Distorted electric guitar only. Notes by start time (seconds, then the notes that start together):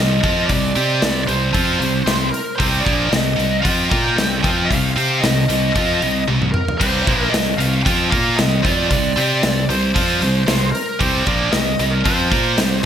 Already playing: C3 G3
0.23 F3 C4 F4
0.50 C3 G3
0.75 C4 G4 C5
1.01 C3 G3
1.28 C3 G3
1.53 F3 C4 F4
1.79 C3 G3
2.06 C3 G3
2.59 C3 G3 C4
2.85 A#2 F3 A#3
3.11 C3 G3
3.36 C3 G3
3.62 F3 C4 F4
3.90 A#3 F4 A#4
4.17 C3 G3
4.43 F3 C4 F4
4.70 C3 G3
4.96 C4 G4 C5
5.23 C3 G3
5.49 C3 G3
5.75 F3 C4 F4
6.02 C3 G3
6.28 C3 G3
6.80 C3 G3 C4
7.06 A#2 F3 A#3
7.32 C3 G3
7.59 C3 G3
7.85 F3 C4 F4
8.10 A#3 F4 A#4
8.37 C3 G3
8.62 F3 C4 F4
8.90 C3 G3
9.16 C4 G4 C5
9.44 C3 G3
9.69 C3 G3
9.94 F3 C4 F4
10.21 C3 G3
10.47 C3 G3
11.00 C3 G3 C4
11.27 A#2 F3 A#3
11.53 C3 G3
11.80 C3 G3
12.04 F3 C4 F4
12.30 A#3 F4 A#4
12.57 C3 G3